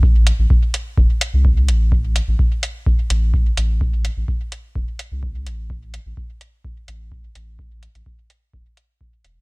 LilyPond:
<<
  \new Staff \with { instrumentName = "Sub bass" } { \clef bass \time 4/4 \key a \minor \tempo 4 = 127 a,,8 r16 a,,16 r4 e,,16 r8 c,8. a,,8~ | a,,8 r16 a,,16 r4. a,,8. r16 a,,8~ | a,,8 r16 a,,16 r4 e,,16 r8 c,8. a,,8~ | a,,8 r16 a,,16 r4. a,,8. r16 a,,8~ |
a,,8 r16 a,,16 r4 e,,16 r4 r16 e,,16 r16 | }
  \new DrumStaff \with { instrumentName = "Drums" } \drummode { \time 4/4 bd8 hh8 bd8 hh8 bd8 hh8 bd8 hh8 | bd8 hh8 bd8 hh8 bd8 hh8 bd8 hh8 | bd8 hh8 bd8 hh8 bd8 hh8 bd8 hh8 | bd8 hh8 bd8 hh8 bd8 hh8 bd8 hh8 |
bd8 hh16 hh16 bd8 hh8 bd8 hh8 bd8 hh8 | }
>>